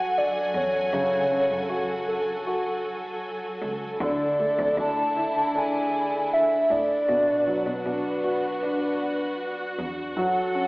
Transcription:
Already playing: F#2 F#3 C#4 F#4 A4 F#5 G#5
0.18 D5
0.54 E2 C#5
0.93 F#2 C#3
1.31 C#4
1.50 F#2
1.69 F#2 F#4
2.08 A4
2.47 F#4
3.62 C#2
4.00 D2 D3 D4 E4 D5
4.39 A3
4.58 D2
4.77 D2 D4 A5
5.16 E4
5.54 D4 G#5
6.33 E5
6.70 A2 D5
7.08 B2 B3 F#4
7.47 F#3
7.66 B2
7.85 B2 D4
8.24 F#4
8.63 D4
9.78 E2
10.16 F#2 F#3 A4 F#5
10.55 C#4

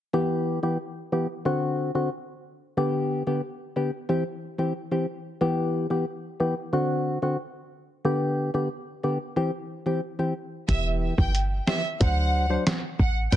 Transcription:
0.13 E3 B3 G4
0.63 E3 B3 G4
1.12 E3 B3 G4
1.45 D3 C4 F#4
1.95 D3 C4 F#4
2.77 D3 B3 G4
3.27 D3 B3 G4
3.76 D3 B3 G4
4.09 E3 C4 G4
4.58 E3 C4 G4
4.91 E3 C4 G4
5.41 E3 B3 G4
5.90 E3 B3 G4
6.40 E3 B3 G4
6.73 D3 C4 F#4
7.22 D3 C4 F#4
8.05 D3 B3 G4
8.54 D3 B3 G4
9.03 D3 B3 G4
9.36 E3 C4 G4
9.86 E3 C4 G4
10.19 E3 C4 G4
10.68 E1 E3 B3 G4 E5, kick, closed hi-hat
11.18 G1 E3 B3 G4 G5, kick
11.35 closed hi-hat
11.67 E3 B3 G4 E5, cross-stick, snare
12.00 D2 F#3 D4 C5 F#5, kick, closed hi-hat
12.50 F#3 D4 C5
12.67 cross-stick, snare, closed hi-hat
12.99 A1 F#5, kick
13.32 G1 G3 D4 B4 G5, kick, closed hi-hat

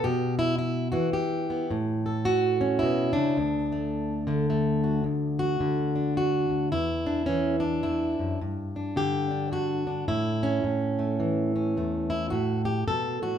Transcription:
0.04 B2 G4
0.39 E4
0.58 E4
0.92 E3 F#4
1.13 G4
1.50 B3
1.71 A2
2.06 A4
2.25 F#4
2.61 C#4
2.79 B2 E4
3.13 C#3 D4
3.37 D2
3.72 A3
4.27 D3 A3
4.50 A3
4.84 F#4
5.04 D2
5.39 F#4
5.60 D3
5.96 D4
6.17 F#4
6.50 D2
6.72 E2 E4
7.06 D4
7.26 E3 C#4
7.60 D4
7.83 E2 E4
8.19 F#2
8.41 G2
8.76 D4
8.96 D3 G4
9.31 D4
9.52 D3 F#4
9.87 D4
10.08 A2 E4
10.43 C#4
10.63 A2
10.99 A3
11.20 E3
11.56 C#4
11.77 E2 A3
12.10 E4
12.30 A2 F#4
12.65 G4
12.88 B2 A4
13.22 A2 F#4

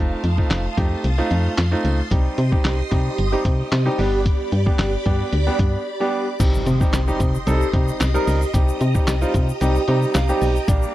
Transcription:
Already playing: F1 A3 C4 D#4 F4 F5 A5 C6 D#6
0.24 F2, closed hi-hat
0.38 A3 C4 D#4 F4, kick
0.51 F1, snare, clap, closed hi-hat
0.77 F2 A3 C4 D#4 G4, kick, closed hi-hat
1.04 C2, closed hi-hat
1.18 A3 C4 D#4 F4
1.31 F2, closed hi-hat
1.58 F2, snare, clap, closed hi-hat
1.71 A3 C4 D#4 F4
1.84 C#2, closed hi-hat
2.11 C2 G3 C4 D#4 G4 D#5 D#6, kick, closed hi-hat
2.38 C3, closed hi-hat
2.52 G3 C4 D#4 G4, kick
2.65 C2, snare, clap, closed hi-hat
2.91 C3 G3 C4 D#4 G4, kick, closed hi-hat
3.18 G1, closed hi-hat
3.32 G3 C4 D#4 G4
3.45 C3, kick, closed hi-hat
3.72 C3, snare, clap, closed hi-hat
3.85 G3 C4 D#4 G4
3.98 G1 G3 B3 D4 G4 D5 B5 D6, open hi-hat
4.26 kick, closed hi-hat
4.52 G2, closed hi-hat
4.66 G3 B3 D4 G4, kick
4.79 G1, snare, clap, closed hi-hat
5.05 G2 G3 B3 D4 G4, kick, closed hi-hat
5.33 D2, closed hi-hat
5.47 G3 B3 D4 G4
5.59 G2, kick, closed hi-hat
6.00 G3 B3 D4 G4
6.40 C2 G3 C4 D#4 G4 D#5 C6 D#6, kick, closed hi-hat, crash, impact, shaker
6.54 shaker
6.66 C3, closed hi-hat, shaker
6.80 G3 C4 D#4 G4, kick, shaker
6.93 C2, snare, clap, closed hi-hat, shaker
7.07 G3 C4 D#4 G4, shaker
7.20 C3, kick, closed hi-hat, shaker
7.35 shaker
7.47 C2 G3 C4 D#4 A4, closed hi-hat, shaker
7.61 shaker
7.73 C3 G3 C4 D#4 G4, kick, closed hi-hat
7.88 shaker
8.00 C2, snare, clap, closed hi-hat, shaker
8.14 G3 C4 D#4 A#4, shaker
8.27 C#2, open hi-hat, shaker
8.42 shaker
8.53 C2 G3 C4 D#4 G4 A#5, kick, closed hi-hat, shaker
8.69 shaker
8.81 C3, closed hi-hat, shaker
8.94 G3 C4 D#4 G4, kick, shaker
9.07 C2, snare, clap, closed hi-hat, shaker
9.21 G3 C4 D#4 F4, shaker
9.34 C3, kick, closed hi-hat, shaker
9.49 shaker
9.61 C2 G3 C4 D#4 G4, closed hi-hat, shaker
9.75 shaker
9.87 C3 G3 C4 D#4 G4 G5, closed hi-hat
10.02 shaker
10.14 C2 F5, snare, clap, closed hi-hat, shaker
10.29 G3 C4 D#4 G4, shaker
10.42 B1 D#5, open hi-hat, shaker
10.56 shaker
10.68 A#1 G3 A#3 D4 G4 D5 D6, kick, closed hi-hat, shaker
10.82 shaker

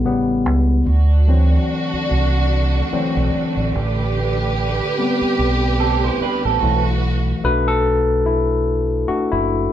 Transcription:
Already playing: E4
0.05 A1 C#3 G3 B3
0.46 C#2
0.86 D2 D3 A3 D4 F#4
1.28 E3 F#3 C4
1.93 muted fingered electric bass stroke
2.11 C2
2.92 E3 F#3 C4, muted fingered electric bass stroke
3.17 B1
3.57 A1
3.73 A1 G4 B4
4.98 G3 B3 C4
5.21 muted fingered electric bass stroke
5.39 B1
5.80 C4 A4
6.04 E4 C5
6.21 D4 B4, muted fingered electric bass stroke
6.45 A1 C4 A4
6.61 B1 E3 F#3 A3 F#4
7.44 B1 A3 D4 F#4 B4
7.68 A4
8.26 E4
9.08 A3 D4 F#4, muted fingered electric bass stroke
9.32 F#1 E4

